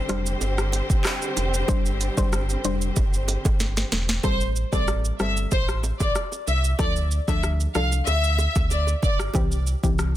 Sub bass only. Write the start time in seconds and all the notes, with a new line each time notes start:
0.09 F1
0.41 G1
0.90 G1
1.37 F1
1.69 G1
2.18 G1
2.64 F1
2.97 G1
3.45 G1
3.92 E1
4.24 A1
4.73 A1
5.20 G1
5.52 A1
6.00 A1
6.47 C2
6.79 D2
7.28 D2
7.75 C2
8.07 D2
8.56 D2
9.03 G1
9.35 C2
9.83 C2